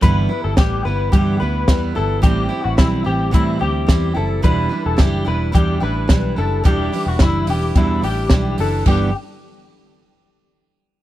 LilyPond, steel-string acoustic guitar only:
\new Staff \with { instrumentName = "Steel-string acoustic guitar" } { \clef bass \time 4/4 \key g \major \tempo 4 = 109 <g, d e g b e'>8 <e g b e'>8 <e g b e'>8 <e g b e'>8 <g, d e g b e'>8 <e g b e'>8 <e g b e'>8 <e g b e'>8 | <a, e g c' e'>8 <g c' e'>8 <e g c' e'>8 <g c' e'>8 <a, e g c' e'>8 <g c' e'>8 <e g c' e'>8 <g c' e'>8 | <e, b, e g d' e'>8 <e g d' e'>8 <e g d' e'>8 <e g d' e'>8 <e, b, e g d' e'>8 <e g d' e'>8 <e g d' e'>8 <e g d' e'>8 | <e, b, e g d' e'>8 <e g d' e'>8 <e g d' e'>8 <e g d' e'>8 <e, b, e g d' e'>8 <e g d' e'>8 <e g d' e'>8 <e g d' e'>8 |
<g, d e g b e'>8 r2. r8 | }